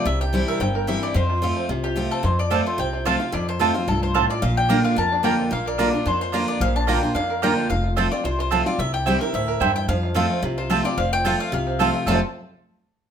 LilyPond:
<<
  \new Staff \with { instrumentName = "Mandolin" } { \time 4/4 \key f \major \tempo 4 = 220 e''8 g''4 e''8 g''4 e''8 d''8 | c''2~ c''8 g'4 a'8 | c''8 d''4 c''8 g''4 f''4 | d''8 c''4. a'8 c''4 d''8 |
f''8 g''4 f''8 a''4 g''4 | f''8 d''4. c''8 c''4 d''8 | f''8 a''8 g''4 f''4 g''4 | f''4 r8 d''8 c''8 c''4 d''8 |
e''8 g''4 e''8 e''4. g''8 | f''2~ f''8 c''4 d''8 | f''8 g''4 f''8 f''4. r8 | a''8 r2. r8 | }
  \new Staff \with { instrumentName = "Mandolin" } { \time 4/4 \key f \major r1 | r1 | r4 <c' f' c'' a''>8 r4. <c' f' c'' a''>8 r8 | r4 <c' f' c'' a''>8 r4. <c' f' c'' a''>8 r8 |
r4 <bes f' d'' bes''>8 r4. <bes f' d'' bes''>8 r8 | r4 <bes f' d'' bes''>8 r4. <bes f' d'' bes''>8 r8 | r4 <bes f' d'' bes''>8 r4. <bes f' d'' bes''>8 r8 | r4 <c' f' c'' a''>8 r4. <c' f' c'' a''>8 r8 |
r4 <c' e' c'' g''>8 r4. <c' e' c'' g''>8 r8 | r4 <c' f' c'' a''>8 r4. <c' f' c'' a''>8 r8 | r4 <c' f' c'' a''>8 r4. <c' f' c'' a''>8 r8 | <c' f' c'' a''>8 r2. r8 | }
  \new Staff \with { instrumentName = "Five-string banjo" } { \time 4/4 \key f \major g8 g'8 c'8 bes'8 c'8 bes'8 g'8 e'8 | c'8 f'8 f'8 c'8 f'8 f'8 f'8 c'8 | f8 f'8 c'8 f'8 c'8 f'8 f'8 f'8 | f'8 f'8 f'8 f'8 f'8 f'8 f'8 f'8 |
f'8 d'8 bes'8 f'8 bes'8 d'8 bes'8 f'8 | bes8 bes'8 f'8 bes8 d'8 f'8 d'8 bes8 | f8 d'8 f'8 bes8 d'8 bes'8 d'8 f'8 | f'8 f'8 f'8 f'8 f'8 f'8 f'8 f'8 |
g8 g'8 c'8 bes'8 c'8 bes'8 g'8 e'8 | f8 f'8 f'8 c'8 f'8 f'8 f'8 f'8 | c'8 f'8 f'8 f'8 f'8 c'8 f'8 f'8 | <a c' f' a'>8 r2. r8 | }
  \new Staff \with { instrumentName = "Steel-string acoustic guitar" } { \time 4/4 \key f \major << { r4 <e g c' e'>4 r4 <e g c' e'>4 | r4 <f a c' f'>4 r4 <f a c' f'>4 | r4 <f a c' f'>4 r4 <f a c' f'>8 <c' f'>8 | r4 <f a c' f'>8 <c' f'>8 r2 |
r4 <d bes d' f'>4 r4 <d bes d' f'>4 | r4 <d bes d' f'>8 <d' f'>8 r4 <d bes d' f'>4 | r4 <d bes d' f'>8 <d' f'>8 r4 <d bes d' f'>4 | r4 <f a c' f'>8 <c' f'>8 r4 <f a c' f'>8 <c' f'>8 |
r4 <e g c' e'>8 <c' e'>8 r2 | r4 <f a c' f'>4 r4 <f a c' f'>8 <c' f'>8 | r4 <f a c' f'>4 r4 <f a c' f'>4 | <f, c f a c' f'>8 r2. r8 | } \\ { c2 g,2 | f,2 c2 | f,2 c2 | f,2 g,4 a,4 |
bes,2 f,2 | bes,2 f,2 | bes,2 f,2 | f,2 c2 |
c2 a,4 g,4 | f,2 c2 | f,2 c2 | r1 | } >> }
  \new Staff \with { instrumentName = "Upright bass" } { \clef bass \time 4/4 \key f \major c,2 g,,2 | f,2 c,2 | f,2 c,2 | f,2 c,2 |
bes,,2 f,2 | bes,,2 f,2 | bes,,2 f,2 | f,,2 c,2 |
c,2 d,4 e,4 | f,2 c,2 | f,,2 c,2 | f,,8 r2. r8 | }
>>